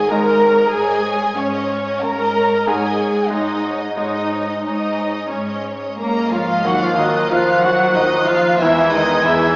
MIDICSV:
0, 0, Header, 1, 11, 480
1, 0, Start_track
1, 0, Tempo, 644468
1, 547, Time_signature, 3, 2, 24, 8
1, 2952, Tempo, 671892
1, 4872, Tempo, 647948
1, 7025, End_track
2, 0, Start_track
2, 0, Title_t, "Flute section"
2, 0, Program_c, 0, 73
2, 4874, Note_on_c, 0, 90, 64
2, 6287, Note_off_c, 0, 90, 0
2, 6319, Note_on_c, 0, 92, 73
2, 7025, Note_off_c, 0, 92, 0
2, 7025, End_track
3, 0, Start_track
3, 0, Title_t, "Violin section"
3, 0, Program_c, 1, 48
3, 0, Note_on_c, 1, 75, 46
3, 83, Note_off_c, 1, 75, 0
3, 89, Note_on_c, 1, 73, 50
3, 192, Note_off_c, 1, 73, 0
3, 209, Note_on_c, 1, 75, 47
3, 319, Note_off_c, 1, 75, 0
3, 327, Note_on_c, 1, 73, 50
3, 436, Note_on_c, 1, 75, 45
3, 437, Note_off_c, 1, 73, 0
3, 551, Note_off_c, 1, 75, 0
3, 567, Note_on_c, 1, 73, 55
3, 667, Note_off_c, 1, 73, 0
3, 679, Note_on_c, 1, 75, 50
3, 790, Note_off_c, 1, 75, 0
3, 801, Note_on_c, 1, 73, 50
3, 910, Note_off_c, 1, 73, 0
3, 910, Note_on_c, 1, 75, 49
3, 1024, Note_off_c, 1, 75, 0
3, 1035, Note_on_c, 1, 73, 47
3, 1139, Note_on_c, 1, 75, 50
3, 1141, Note_off_c, 1, 73, 0
3, 1265, Note_off_c, 1, 75, 0
3, 1276, Note_on_c, 1, 73, 45
3, 1397, Note_off_c, 1, 73, 0
3, 1413, Note_on_c, 1, 75, 40
3, 1526, Note_off_c, 1, 75, 0
3, 1538, Note_on_c, 1, 73, 48
3, 1641, Note_off_c, 1, 73, 0
3, 1656, Note_on_c, 1, 75, 50
3, 1766, Note_off_c, 1, 75, 0
3, 1775, Note_on_c, 1, 73, 49
3, 1884, Note_off_c, 1, 73, 0
3, 1889, Note_on_c, 1, 75, 46
3, 2000, Note_off_c, 1, 75, 0
3, 2008, Note_on_c, 1, 73, 51
3, 2111, Note_off_c, 1, 73, 0
3, 2135, Note_on_c, 1, 75, 50
3, 2241, Note_off_c, 1, 75, 0
3, 2245, Note_on_c, 1, 73, 45
3, 2356, Note_off_c, 1, 73, 0
3, 2365, Note_on_c, 1, 75, 44
3, 2476, Note_off_c, 1, 75, 0
3, 2477, Note_on_c, 1, 73, 45
3, 2584, Note_off_c, 1, 73, 0
3, 2594, Note_on_c, 1, 75, 43
3, 2712, Note_off_c, 1, 75, 0
3, 2723, Note_on_c, 1, 73, 46
3, 2837, Note_off_c, 1, 73, 0
3, 2839, Note_on_c, 1, 75, 40
3, 2957, Note_off_c, 1, 75, 0
3, 2960, Note_on_c, 1, 73, 43
3, 3067, Note_off_c, 1, 73, 0
3, 3076, Note_on_c, 1, 75, 43
3, 3194, Note_off_c, 1, 75, 0
3, 3203, Note_on_c, 1, 73, 43
3, 3318, Note_off_c, 1, 73, 0
3, 3319, Note_on_c, 1, 75, 42
3, 3436, Note_off_c, 1, 75, 0
3, 3445, Note_on_c, 1, 73, 44
3, 3551, Note_off_c, 1, 73, 0
3, 3563, Note_on_c, 1, 75, 43
3, 3678, Note_off_c, 1, 75, 0
3, 3680, Note_on_c, 1, 73, 41
3, 3792, Note_on_c, 1, 75, 39
3, 3797, Note_off_c, 1, 73, 0
3, 3912, Note_off_c, 1, 75, 0
3, 3915, Note_on_c, 1, 73, 39
3, 4026, Note_off_c, 1, 73, 0
3, 4037, Note_on_c, 1, 75, 45
3, 4155, Note_off_c, 1, 75, 0
3, 4164, Note_on_c, 1, 73, 40
3, 4279, Note_off_c, 1, 73, 0
3, 4281, Note_on_c, 1, 75, 39
3, 4398, Note_off_c, 1, 75, 0
3, 4402, Note_on_c, 1, 73, 41
3, 4404, Note_on_c, 1, 82, 73
3, 4510, Note_off_c, 1, 73, 0
3, 4530, Note_on_c, 1, 75, 48
3, 4623, Note_off_c, 1, 82, 0
3, 4643, Note_off_c, 1, 75, 0
3, 4649, Note_on_c, 1, 73, 40
3, 4649, Note_on_c, 1, 77, 70
3, 4752, Note_on_c, 1, 75, 53
3, 4762, Note_off_c, 1, 73, 0
3, 4871, Note_off_c, 1, 75, 0
3, 4879, Note_on_c, 1, 78, 85
3, 4880, Note_off_c, 1, 77, 0
3, 4992, Note_on_c, 1, 77, 76
3, 4997, Note_off_c, 1, 78, 0
3, 5109, Note_on_c, 1, 75, 66
3, 5115, Note_off_c, 1, 77, 0
3, 5354, Note_off_c, 1, 75, 0
3, 5362, Note_on_c, 1, 77, 69
3, 5589, Note_on_c, 1, 78, 71
3, 5599, Note_off_c, 1, 77, 0
3, 5832, Note_off_c, 1, 78, 0
3, 5839, Note_on_c, 1, 75, 75
3, 6059, Note_on_c, 1, 77, 80
3, 6077, Note_off_c, 1, 75, 0
3, 6304, Note_on_c, 1, 76, 79
3, 6307, Note_off_c, 1, 77, 0
3, 6539, Note_on_c, 1, 75, 86
3, 6545, Note_off_c, 1, 76, 0
3, 6787, Note_off_c, 1, 75, 0
3, 6794, Note_on_c, 1, 76, 86
3, 7025, Note_off_c, 1, 76, 0
3, 7025, End_track
4, 0, Start_track
4, 0, Title_t, "French horn section"
4, 0, Program_c, 2, 60
4, 4866, Note_on_c, 2, 70, 63
4, 5325, Note_off_c, 2, 70, 0
4, 5347, Note_on_c, 2, 72, 75
4, 6305, Note_on_c, 2, 71, 77
4, 6310, Note_off_c, 2, 72, 0
4, 6788, Note_on_c, 2, 68, 86
4, 6790, Note_off_c, 2, 71, 0
4, 7025, Note_off_c, 2, 68, 0
4, 7025, End_track
5, 0, Start_track
5, 0, Title_t, "Violin section"
5, 0, Program_c, 3, 48
5, 73, Note_on_c, 3, 82, 67
5, 546, Note_on_c, 3, 80, 78
5, 548, Note_off_c, 3, 82, 0
5, 1009, Note_off_c, 3, 80, 0
5, 1024, Note_on_c, 3, 73, 65
5, 1516, Note_on_c, 3, 82, 70
5, 1518, Note_off_c, 3, 73, 0
5, 1993, Note_off_c, 3, 82, 0
5, 1995, Note_on_c, 3, 80, 68
5, 2468, Note_off_c, 3, 80, 0
5, 2469, Note_on_c, 3, 75, 65
5, 2951, Note_off_c, 3, 75, 0
5, 2960, Note_on_c, 3, 75, 53
5, 3426, Note_off_c, 3, 75, 0
5, 3444, Note_on_c, 3, 75, 61
5, 3909, Note_off_c, 3, 75, 0
5, 3918, Note_on_c, 3, 73, 48
5, 4397, Note_off_c, 3, 73, 0
5, 4401, Note_on_c, 3, 70, 57
5, 4622, Note_off_c, 3, 70, 0
5, 4634, Note_on_c, 3, 65, 53
5, 4872, Note_off_c, 3, 65, 0
5, 4875, Note_on_c, 3, 66, 75
5, 4993, Note_off_c, 3, 66, 0
5, 5001, Note_on_c, 3, 65, 59
5, 5116, Note_on_c, 3, 63, 61
5, 5117, Note_off_c, 3, 65, 0
5, 5353, Note_off_c, 3, 63, 0
5, 5363, Note_on_c, 3, 65, 67
5, 5600, Note_off_c, 3, 65, 0
5, 5602, Note_on_c, 3, 66, 69
5, 5838, Note_off_c, 3, 66, 0
5, 5840, Note_on_c, 3, 63, 59
5, 6078, Note_off_c, 3, 63, 0
5, 6083, Note_on_c, 3, 65, 67
5, 6319, Note_off_c, 3, 65, 0
5, 6328, Note_on_c, 3, 64, 76
5, 6558, Note_on_c, 3, 63, 68
5, 6562, Note_off_c, 3, 64, 0
5, 6797, Note_off_c, 3, 63, 0
5, 6797, Note_on_c, 3, 64, 77
5, 7025, Note_off_c, 3, 64, 0
5, 7025, End_track
6, 0, Start_track
6, 0, Title_t, "Cor anglais"
6, 0, Program_c, 4, 69
6, 4395, Note_on_c, 4, 70, 55
6, 4639, Note_on_c, 4, 65, 61
6, 4650, Note_off_c, 4, 70, 0
6, 4878, Note_on_c, 4, 66, 69
6, 4889, Note_off_c, 4, 65, 0
6, 5004, Note_on_c, 4, 65, 62
6, 5015, Note_off_c, 4, 66, 0
6, 5122, Note_on_c, 4, 63, 61
6, 5134, Note_off_c, 4, 65, 0
6, 5376, Note_on_c, 4, 65, 74
6, 5387, Note_off_c, 4, 63, 0
6, 5612, Note_on_c, 4, 66, 61
6, 5623, Note_off_c, 4, 65, 0
6, 5841, Note_off_c, 4, 66, 0
6, 5846, Note_on_c, 4, 63, 65
6, 6088, Note_on_c, 4, 65, 71
6, 6099, Note_off_c, 4, 63, 0
6, 6328, Note_on_c, 4, 64, 67
6, 6339, Note_off_c, 4, 65, 0
6, 6560, Note_on_c, 4, 63, 59
6, 6571, Note_off_c, 4, 64, 0
6, 6792, Note_off_c, 4, 63, 0
6, 6796, Note_on_c, 4, 64, 80
6, 7025, Note_off_c, 4, 64, 0
6, 7025, End_track
7, 0, Start_track
7, 0, Title_t, "Clarinet"
7, 0, Program_c, 5, 71
7, 4885, Note_on_c, 5, 65, 52
7, 6292, Note_off_c, 5, 65, 0
7, 6320, Note_on_c, 5, 63, 69
7, 7025, Note_off_c, 5, 63, 0
7, 7025, End_track
8, 0, Start_track
8, 0, Title_t, "Viola section"
8, 0, Program_c, 6, 48
8, 71, Note_on_c, 6, 70, 90
8, 535, Note_on_c, 6, 68, 85
8, 547, Note_off_c, 6, 70, 0
8, 1009, Note_on_c, 6, 61, 75
8, 1013, Note_off_c, 6, 68, 0
8, 1509, Note_on_c, 6, 70, 93
8, 1510, Note_off_c, 6, 61, 0
8, 1990, Note_off_c, 6, 70, 0
8, 1998, Note_on_c, 6, 68, 73
8, 2465, Note_on_c, 6, 63, 74
8, 2470, Note_off_c, 6, 68, 0
8, 2942, Note_off_c, 6, 63, 0
8, 2951, Note_on_c, 6, 63, 73
8, 3420, Note_off_c, 6, 63, 0
8, 3429, Note_on_c, 6, 63, 71
8, 3902, Note_off_c, 6, 63, 0
8, 3902, Note_on_c, 6, 61, 54
8, 4388, Note_off_c, 6, 61, 0
8, 5115, Note_on_c, 6, 53, 49
8, 5115, Note_on_c, 6, 65, 52
8, 5587, Note_off_c, 6, 53, 0
8, 5587, Note_off_c, 6, 65, 0
8, 5591, Note_on_c, 6, 54, 54
8, 5594, Note_on_c, 6, 63, 53
8, 6063, Note_off_c, 6, 54, 0
8, 6065, Note_off_c, 6, 63, 0
8, 6076, Note_on_c, 6, 65, 49
8, 6078, Note_on_c, 6, 53, 49
8, 6311, Note_off_c, 6, 65, 0
8, 6312, Note_off_c, 6, 53, 0
8, 6314, Note_on_c, 6, 56, 55
8, 6317, Note_on_c, 6, 59, 53
8, 6542, Note_off_c, 6, 56, 0
8, 6544, Note_off_c, 6, 59, 0
8, 6551, Note_on_c, 6, 56, 58
8, 6553, Note_on_c, 6, 59, 58
8, 7022, Note_off_c, 6, 56, 0
8, 7023, Note_off_c, 6, 59, 0
8, 7025, End_track
9, 0, Start_track
9, 0, Title_t, "Grand piano"
9, 0, Program_c, 7, 0
9, 0, Control_c, 7, 64, 127
9, 0, Note_on_c, 7, 44, 58
9, 0, Note_on_c, 7, 51, 46
9, 81, Note_on_c, 7, 56, 42
9, 83, Note_on_c, 7, 75, 47
9, 86, Note_on_c, 7, 63, 43
9, 363, Note_off_c, 7, 51, 0
9, 517, Note_off_c, 7, 44, 0
9, 561, Control_c, 7, 64, 0
9, 660, Control_c, 7, 64, 127
9, 1968, Note_off_c, 7, 56, 0
9, 1969, Note_off_c, 7, 75, 0
9, 1971, Note_off_c, 7, 63, 0
9, 1991, Note_on_c, 7, 44, 61
9, 2008, Control_c, 7, 64, 0
9, 2131, Control_c, 7, 64, 127
9, 2461, Note_on_c, 7, 56, 43
9, 2946, Note_off_c, 7, 56, 0
9, 2957, Note_on_c, 7, 56, 39
9, 2959, Note_on_c, 7, 75, 42
9, 2960, Note_on_c, 7, 63, 38
9, 3403, Note_off_c, 7, 44, 0
9, 3448, Control_c, 7, 64, 0
9, 3582, Control_c, 7, 64, 127
9, 4846, Note_off_c, 7, 56, 0
9, 4847, Note_off_c, 7, 63, 0
9, 4847, Note_off_c, 7, 75, 0
9, 4867, Note_on_c, 7, 39, 54
9, 4888, Control_c, 7, 64, 0
9, 5017, Control_c, 7, 64, 127
9, 5119, Note_on_c, 7, 54, 43
9, 5360, Note_on_c, 7, 65, 49
9, 5503, Note_off_c, 7, 54, 0
9, 5609, Note_on_c, 7, 54, 43
9, 5741, Note_off_c, 7, 65, 0
9, 5848, Note_on_c, 7, 75, 49
9, 5986, Note_off_c, 7, 54, 0
9, 6088, Note_on_c, 7, 65, 45
9, 6226, Note_off_c, 7, 75, 0
9, 6283, Note_off_c, 7, 39, 0
9, 6322, Note_off_c, 7, 65, 0
9, 6329, Control_c, 7, 64, 0
9, 6330, Note_on_c, 7, 40, 59
9, 6455, Control_c, 7, 64, 127
9, 6562, Note_on_c, 7, 56, 47
9, 6800, Note_on_c, 7, 59, 52
9, 6942, Note_off_c, 7, 56, 0
9, 7025, Note_off_c, 7, 40, 0
9, 7025, Note_off_c, 7, 59, 0
9, 7025, End_track
10, 0, Start_track
10, 0, Title_t, "Cello section"
10, 0, Program_c, 8, 48
10, 72, Note_on_c, 8, 44, 64
10, 492, Note_off_c, 8, 44, 0
10, 541, Note_on_c, 8, 44, 70
10, 960, Note_off_c, 8, 44, 0
10, 1019, Note_on_c, 8, 44, 56
10, 1457, Note_off_c, 8, 44, 0
10, 1518, Note_on_c, 8, 44, 59
10, 1939, Note_off_c, 8, 44, 0
10, 1991, Note_on_c, 8, 44, 72
10, 2410, Note_off_c, 8, 44, 0
10, 2470, Note_on_c, 8, 44, 54
10, 2896, Note_off_c, 8, 44, 0
10, 2955, Note_on_c, 8, 44, 55
10, 3377, Note_off_c, 8, 44, 0
10, 3437, Note_on_c, 8, 44, 61
10, 3859, Note_off_c, 8, 44, 0
10, 3918, Note_on_c, 8, 44, 53
10, 4340, Note_off_c, 8, 44, 0
10, 4397, Note_on_c, 8, 44, 53
10, 4398, Note_on_c, 8, 58, 59
10, 4620, Note_off_c, 8, 58, 0
10, 4637, Note_on_c, 8, 53, 54
10, 4818, Note_off_c, 8, 44, 0
10, 4874, Note_off_c, 8, 53, 0
10, 4876, Note_on_c, 8, 54, 66
10, 4996, Note_off_c, 8, 54, 0
10, 4997, Note_on_c, 8, 53, 62
10, 5116, Note_on_c, 8, 51, 57
10, 5118, Note_off_c, 8, 53, 0
10, 5358, Note_off_c, 8, 51, 0
10, 5359, Note_on_c, 8, 53, 62
10, 5595, Note_on_c, 8, 54, 72
10, 5598, Note_off_c, 8, 53, 0
10, 5835, Note_off_c, 8, 54, 0
10, 5837, Note_on_c, 8, 51, 63
10, 6074, Note_on_c, 8, 53, 60
10, 6077, Note_off_c, 8, 51, 0
10, 6313, Note_on_c, 8, 52, 72
10, 6315, Note_off_c, 8, 53, 0
10, 6549, Note_off_c, 8, 52, 0
10, 6549, Note_on_c, 8, 51, 67
10, 6791, Note_on_c, 8, 52, 74
10, 6792, Note_off_c, 8, 51, 0
10, 7025, Note_off_c, 8, 52, 0
10, 7025, End_track
11, 0, Start_track
11, 0, Title_t, "Double bass section"
11, 0, Program_c, 10, 48
11, 4875, Note_on_c, 10, 39, 71
11, 5303, Note_off_c, 10, 39, 0
11, 5368, Note_on_c, 10, 39, 62
11, 5785, Note_off_c, 10, 39, 0
11, 5838, Note_on_c, 10, 39, 64
11, 6260, Note_off_c, 10, 39, 0
11, 6325, Note_on_c, 10, 40, 72
11, 6744, Note_off_c, 10, 40, 0
11, 6804, Note_on_c, 10, 40, 74
11, 7025, Note_off_c, 10, 40, 0
11, 7025, End_track
0, 0, End_of_file